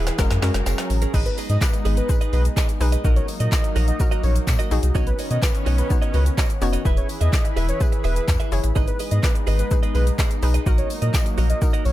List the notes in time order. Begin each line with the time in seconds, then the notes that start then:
Already playing: D#1 E3 E4 G#4 B4
0.06 E4 G#4 B4, snare, closed hi-hat, shaker
0.18 F#1 F#3 G#3 C#4 F#4 A#4, muted clean electric guitar stroke, kick, snare, tambourine, shaker
0.30 F#2, muted clean electric guitar stroke, snare, closed hi-hat, shaker
0.42 F#2 G#3 C#4 F#4 G#4 A#4, snare, open hi-hat, shaker
0.54 F#1, snare, closed hi-hat, shaker
0.66 F#1 C#4 G#4 A#4, snare, tambourine, shaker
0.78 muted clean electric guitar stroke, snare, closed hi-hat, shaker
0.90 A1, muted clean electric guitar stroke, open hi-hat, tambourine, shaker
1.02 C#4 G#4 A#4, closed hi-hat, shaker
1.14 G#1 G#3 B3 D#4 G#4 B4 D#5, kick, crash, shaker
1.26 B4, closed hi-hat, shaker
1.38 G#4 B4 D#5, open hi-hat, tambourine, shaker
1.50 G#2 G#4 B4 D#5, closed hi-hat, shaker
1.61 B4, kick, snare, clap, tambourine, shaker
1.73 muted clean electric guitar stroke, closed hi-hat, shaker
1.85 G#1 G#4 B4 D#5, open hi-hat, tambourine, shaker
1.97 G#4 B4 D#5, closed hi-hat, shaker
2.09 D#4 G#4 B4, muted clean electric guitar stroke, kick, tambourine, shaker
2.21 G#4 B4 D#5, closed hi-hat, shaker
2.33 B1 G#4 B4 D#5, open hi-hat, tambourine, shaker
2.45 muted clean electric guitar stroke, closed hi-hat, shaker
2.56 G#4 B4 D#5, kick, snare, clap, tambourine, shaker
2.68 muted clean electric guitar stroke, closed hi-hat, shaker
2.80 B1 D#4 G#4 B4, muted clean electric guitar stroke, open hi-hat, tambourine, shaker
2.92 G#4 B4 D#5, closed hi-hat, shaker
3.04 A#1 F#3 A#3 D#4 F#4 A#4 D#5, kick, tambourine, shaker
3.16 C#5, closed hi-hat, shaker
3.28 muted clean electric guitar stroke, open hi-hat, tambourine, shaker
3.40 A#2 F#4 A#4 D#5, closed hi-hat, shaker
3.52 D#5, muted clean electric guitar stroke, kick, snare, clap, tambourine, shaker
3.64 muted clean electric guitar stroke, closed hi-hat, shaker
3.76 A#1 F#4 A#4 D#5, open hi-hat, tambourine, shaker
3.88 D#5, muted clean electric guitar stroke, closed hi-hat, shaker
3.99 D#4 F#4 A#4, muted clean electric guitar stroke, kick, tambourine, shaker
4.11 F#4 A#4 D#5, closed hi-hat, shaker
4.23 A#1 C#5, open hi-hat, tambourine, shaker
4.35 muted clean electric guitar stroke, closed hi-hat, shaker
4.47 A#2, muted clean electric guitar stroke, kick, snare, clap, tambourine, shaker
4.59 F#4 A#4 D#5, closed hi-hat, shaker
4.71 A#1 D#4 F#4 G#4, open hi-hat, tambourine, shaker
4.83 C2, muted clean electric guitar stroke, closed hi-hat, shaker
4.95 B1 D#3 B3 C#4 D#4 F#4 C#5 D#5, kick, tambourine, shaker
5.07 B4, closed hi-hat, shaker
5.19 F#4 C#5 D#5, open hi-hat, tambourine, shaker
5.31 B2 F#4 C#5 D#5, closed hi-hat, shaker
5.42 B4, kick, snare, clap, tambourine, shaker
5.55 muted clean electric guitar stroke, closed hi-hat, shaker
5.66 B1 F#4 C#5 D#5, open hi-hat, tambourine, shaker
5.78 F#4 B4 C#5 D#5, closed hi-hat, shaker
5.90 B3 C#4 D#4 F#4 C#5, muted clean electric guitar stroke, kick, tambourine, shaker
6.02 F#4 C#5 D#5, closed hi-hat, shaker
6.14 C#2 F#4 B4 C#5 D#5, open hi-hat, tambourine, shaker
6.26 muted clean electric guitar stroke, closed hi-hat, shaker
6.37 F#4 C#5 D#5, kick, snare, clap, tambourine, shaker
6.49 muted clean electric guitar stroke, closed hi-hat, shaker
6.61 F1 B3 C#4 D#4 F#4 C#5, muted clean electric guitar stroke, open hi-hat, tambourine, shaker
6.73 F#4 C#5 D#5, closed hi-hat, shaker
6.85 E1 E3 E4 G#4 B4 E5, kick, tambourine, shaker
6.97 C#5, closed hi-hat, shaker
7.09 muted clean electric guitar stroke, open hi-hat, tambourine, shaker
7.21 E2 G#4 B4 D#5 E5, closed hi-hat, shaker
7.33 D#5, kick, snare, clap, tambourine, shaker
7.45 muted clean electric guitar stroke, closed hi-hat, shaker
7.56 E1 G#4 B4 E5, open hi-hat, tambourine, shaker
7.69 C#5, closed hi-hat, shaker
7.80 E4 G#4 B4, muted clean electric guitar stroke, kick, tambourine, shaker
7.92 muted clean electric guitar stroke, closed hi-hat, shaker
8.04 E1 G#4 B4 E5, open hi-hat, tambourine, shaker
8.16 G#4 B4 E5, closed hi-hat, shaker
8.28 E2, kick, snare, clap, tambourine, shaker
8.40 G#4 B4 E5, closed hi-hat, shaker
8.52 F#1 E4 G#4 C#5, muted clean electric guitar stroke, open hi-hat, tambourine, shaker
8.64 A1, muted clean electric guitar stroke, closed hi-hat, shaker
8.75 G#1 G#3 B3 D#4 G#4 B4 D#5, kick, tambourine, shaker
8.88 B4, closed hi-hat, shaker
8.99 G#4 B4 D#5, open hi-hat, tambourine, shaker
9.11 G#2 G#4 B4 D#5, closed hi-hat, shaker
9.23 B4, kick, snare, clap, tambourine, shaker
9.35 muted clean electric guitar stroke, closed hi-hat, shaker
9.47 G#1 G#4 B4 D#5, open hi-hat, tambourine, shaker
9.59 G#4 B4 D#5, closed hi-hat, shaker
9.71 D#4 G#4 B4, muted clean electric guitar stroke, kick, tambourine, shaker
9.83 G#4 B4 D#5, closed hi-hat, shaker
9.95 B1 G#4 B4 D#5, open hi-hat, tambourine, shaker
10.07 muted clean electric guitar stroke, closed hi-hat, shaker
10.18 G#4 B4 D#5, kick, snare, clap, tambourine, shaker
10.30 muted clean electric guitar stroke, closed hi-hat, shaker
10.42 B1 D#4 G#4 B4, muted clean electric guitar stroke, open hi-hat, tambourine, shaker
10.54 G#4 B4 D#5, closed hi-hat, shaker
10.66 A#1 F#3 A#3 D#4 F#4 A#4 D#5, kick, tambourine, shaker
10.78 C#5, closed hi-hat, shaker
10.90 open hi-hat, tambourine, shaker
11.02 A#2 F#4 A#4 D#5, closed hi-hat, shaker
11.14 D#5, muted clean electric guitar stroke, kick, snare, clap, tambourine, shaker
11.26 muted clean electric guitar stroke, closed hi-hat, shaker
11.38 A#1 F#4 A#4 D#5, open hi-hat, tambourine, shaker
11.50 D#5, muted clean electric guitar stroke, closed hi-hat, shaker
11.61 D#4 F#4 A#4, muted clean electric guitar stroke, kick, tambourine, shaker
11.73 F#4 A#4 D#5, closed hi-hat, shaker
11.85 A#1 C#5, muted clean electric guitar stroke, open hi-hat, tambourine, shaker